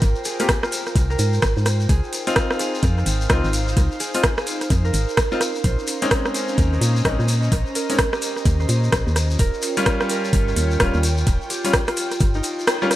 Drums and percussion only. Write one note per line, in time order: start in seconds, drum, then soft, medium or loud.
0.02 kick loud
0.02 closed hi-hat medium
0.02 shekere soft
0.16 shekere soft
0.25 open hi-hat loud
0.25 shekere loud
0.39 closed hi-hat medium
0.39 shekere soft
0.49 kick loud
0.49 cross-stick loud
0.49 closed hi-hat medium
0.49 shekere soft
0.63 cross-stick medium
0.63 shekere soft
0.72 open hi-hat loud
0.72 shekere medium
0.86 cross-stick soft
0.86 shekere soft
0.96 kick loud
0.96 closed hi-hat medium
0.96 shekere medium
1.11 shekere soft
1.19 open hi-hat loud
1.19 shekere loud
1.33 shekere soft
1.42 kick loud
1.42 cross-stick loud
1.42 closed hi-hat medium
1.42 shekere medium
1.57 shekere soft
1.66 cross-stick medium
1.66 open hi-hat loud
1.66 shekere medium
1.80 shekere soft
1.89 kick loud
1.89 closed hi-hat medium
1.89 shekere medium
2.04 shekere soft
2.13 open hi-hat loud
2.13 shekere medium
2.27 closed hi-hat medium
2.27 shekere soft
2.36 kick loud
2.36 cross-stick loud
2.36 closed hi-hat medium
2.36 shekere soft
2.50 cross-stick medium
2.50 shekere soft
2.59 open hi-hat loud
2.59 shekere medium
2.75 shekere soft
2.83 kick loud
2.83 closed hi-hat medium
2.83 shekere medium
2.98 shekere soft
3.06 open hi-hat loud
3.06 shekere loud
3.21 shekere soft
3.30 kick loud
3.30 cross-stick loud
3.30 closed hi-hat medium
3.30 shekere medium
3.44 shekere soft
3.53 open hi-hat loud
3.53 shekere loud
3.68 shekere soft
3.77 kick loud
3.77 closed hi-hat medium
3.77 shekere soft
3.92 shekere soft
4.00 open hi-hat loud
4.00 shekere loud
4.14 closed hi-hat medium
4.14 shekere soft
4.23 kick loud
4.23 cross-stick loud
4.23 closed hi-hat medium
4.23 shekere medium
4.38 cross-stick medium
4.38 shekere soft
4.47 open hi-hat loud
4.47 shekere medium
4.61 cross-stick soft
4.61 closed hi-hat soft
4.61 shekere soft
4.70 kick loud
4.70 closed hi-hat medium
4.70 shekere medium
4.85 shekere soft
4.94 open hi-hat loud
4.94 shekere medium
5.09 shekere soft
5.17 kick loud
5.17 cross-stick loud
5.17 closed hi-hat medium
5.17 shekere medium
5.32 shekere soft
5.41 cross-stick medium
5.41 open hi-hat loud
5.41 shekere medium
5.55 shekere soft
5.64 kick loud
5.64 closed hi-hat medium
5.64 shekere medium
5.79 shekere soft
5.87 open hi-hat loud
5.87 shekere medium
6.02 closed hi-hat medium
6.02 shekere soft
6.11 kick loud
6.11 cross-stick loud
6.11 closed hi-hat medium
6.11 shekere soft
6.25 cross-stick medium
6.25 shekere soft
6.34 open hi-hat loud
6.34 shekere medium
6.48 shekere soft
6.58 kick loud
6.58 closed hi-hat medium
6.58 shekere medium
6.73 shekere soft
6.81 open hi-hat loud
6.81 shekere medium
6.96 shekere soft
7.05 kick loud
7.05 cross-stick loud
7.05 closed hi-hat medium
7.05 shekere soft
7.20 shekere soft
7.28 open hi-hat loud
7.28 shekere loud
7.43 shekere soft
7.52 kick loud
7.52 closed hi-hat medium
7.52 shekere medium
7.66 shekere soft
7.75 open hi-hat loud
7.75 shekere medium
7.90 closed hi-hat medium
7.90 shekere soft
7.99 kick loud
7.99 cross-stick loud
7.99 closed hi-hat medium
7.99 shekere soft
8.13 cross-stick medium
8.13 shekere soft
8.22 open hi-hat loud
8.22 shekere loud
8.36 cross-stick soft
8.36 shekere soft
8.46 kick loud
8.46 closed hi-hat medium
8.46 shekere medium
8.60 shekere soft
8.69 open hi-hat loud
8.69 shekere medium
8.84 shekere soft
8.92 kick loud
8.92 cross-stick loud
8.92 closed hi-hat medium
8.92 shekere medium
9.08 shekere soft
9.16 cross-stick medium
9.16 open hi-hat loud
9.16 shekere medium
9.31 shekere soft
9.39 kick loud
9.39 closed hi-hat medium
9.39 shekere soft
9.54 shekere soft
9.62 open hi-hat loud
9.62 shekere loud
9.77 closed hi-hat medium
9.77 shekere soft
9.86 kick loud
9.86 cross-stick loud
9.86 closed hi-hat medium
9.86 shekere soft
10.01 cross-stick medium
10.01 shekere soft
10.10 open hi-hat loud
10.10 shekere medium
10.25 shekere soft
10.33 kick loud
10.33 closed hi-hat medium
10.33 shekere soft
10.48 shekere soft
10.56 open hi-hat loud
10.56 shekere medium
10.71 shekere soft
10.80 kick loud
10.80 cross-stick loud
10.80 closed hi-hat medium
10.80 shekere soft
10.94 shekere soft
11.03 open hi-hat loud
11.03 shekere medium
11.18 shekere soft
11.27 kick loud
11.27 closed hi-hat medium
11.27 shekere soft
11.42 shekere soft
11.50 open hi-hat loud
11.50 shekere medium
11.65 closed hi-hat medium
11.65 shekere soft
11.73 kick loud
11.73 cross-stick loud
11.73 closed hi-hat medium
11.73 shekere soft
11.87 cross-stick medium
11.87 closed hi-hat soft
11.87 shekere soft
11.97 open hi-hat loud
11.97 shekere medium
12.12 cross-stick soft
12.12 closed hi-hat soft
12.12 shekere soft
12.20 kick loud
12.20 closed hi-hat medium
12.20 shekere soft
12.34 shekere soft
12.43 open hi-hat loud
12.43 shekere medium
12.59 shekere soft
12.67 cross-stick loud
12.67 closed hi-hat medium
12.67 shekere soft
12.82 shekere soft
12.91 cross-stick medium
12.91 open hi-hat loud
12.91 shekere medium